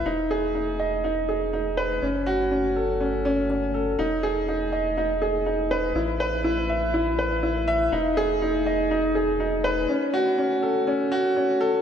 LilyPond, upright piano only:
\new Staff \with { instrumentName = "Upright piano" } { \time 4/4 \key e \major \tempo 4 = 122 dis'8 gis'8 dis'8 dis''8 dis'8 gis'8 dis'8 b'8 | cis'8 fis'8 cis'8 a'8 cis'8 cis'8 cis'8 a'8 | dis'8 gis'8 dis'8 dis''8 dis'8 gis'8 dis'8 b'8 | e'8 b'8 e'8 e''8 e'8 b'8 e'8 e''8 |
dis'8 gis'8 dis'8 dis''8 dis'8 gis'8 dis'8 b'8 | cis'8 fis'8 cis'8 a'8 cis'8 fis'8 cis'8 a'8 | }